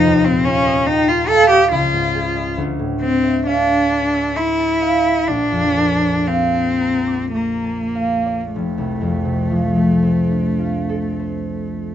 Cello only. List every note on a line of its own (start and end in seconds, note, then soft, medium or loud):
0.00 0.26 D#4 medium
0.25 0.46 C4 medium
0.44 0.88 C#4 medium
0.87 1.10 D#4 medium
1.09 1.30 F4 medium
1.29 1.49 A4 loud
1.50 1.71 G4 medium
1.72 2.55 F4 medium
3.01 3.43 C4 medium
3.47 4.38 D4 medium
4.37 5.29 E4 medium
5.28 6.29 D4 medium
6.28 7.33 C4 medium
7.34 8.52 A#3 soft
8.52 11.95 A3 soft